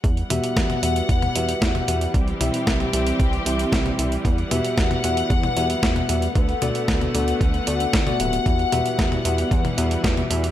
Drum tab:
HH |xxxxxxxxxxxxxxxx|xxxxxxxxxxxxxxxx|xxxxxxxxxxxxxxxx|xxxxxxxxxxxxxxxx|
SD |----o-------o---|----o-------o---|----o-------o---|----o-------o---|
T1 |--o--o---o---o--|--o--o-------o--|--o--o---o---o--|--o--o-------o--|
BD |o---o---o---o---|o---o---o---o---|o---o---o---o---|o---o---o---o---|

HH |xxxxxxxxxxxxxxxx|
SD |----o-------o---|
T1 |--o--o---o---o--|
BD |o---o---o---o---|